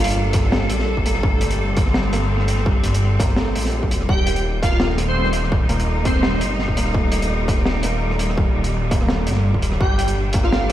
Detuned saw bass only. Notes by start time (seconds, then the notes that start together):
0.00 G1
0.69 A#1
0.97 G1
1.23 G1
2.84 G1
3.55 A#1
3.91 F1
4.09 D#1
5.69 D#1
6.41 G1
6.68 D#1
6.94 D#1
8.55 D#1
9.27 G1
9.54 D#1
9.81 G1